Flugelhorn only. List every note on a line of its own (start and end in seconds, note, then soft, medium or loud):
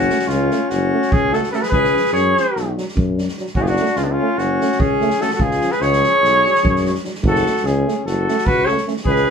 0.00 0.29 F#4 loud
0.28 0.71 F4 medium
0.69 1.13 F#4 medium
1.12 1.35 G#4 loud
1.33 1.50 A4 medium
1.51 1.63 A4 medium
1.51 1.56 B4 medium
1.62 1.69 B4 medium
1.69 2.09 B4 loud
2.13 2.73 C#5 medium
3.55 3.64 F#4 medium
3.63 3.69 G#4 medium
3.67 3.98 F#4 loud
3.97 4.05 F4 medium
4.04 4.13 D4 medium
4.12 4.40 F4 medium
4.38 4.81 F#4 medium
4.80 5.23 G#4 loud
5.22 5.33 A4 medium
5.33 5.43 A4 medium
5.41 5.73 G#4 medium
5.72 5.83 B4 medium
5.81 7.04 C#5 loud
7.28 7.67 A4 loud
7.66 8.05 G#4 medium
8.05 8.48 A4 medium
8.46 8.67 B4 loud
8.65 8.85 C#5 medium
9.06 9.30 B4 loud